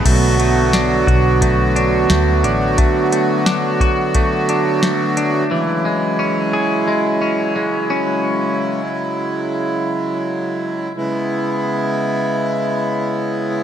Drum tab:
CC |x-------|--------|--------|--------|
HH |xxxxxxxx|xxxxxxxx|--------|--------|
SD |--o---o-|--o---o-|--------|--------|
BD |o--oo---|o--oo---|--------|--------|

CC |--------|
HH |--------|
SD |--------|
BD |--------|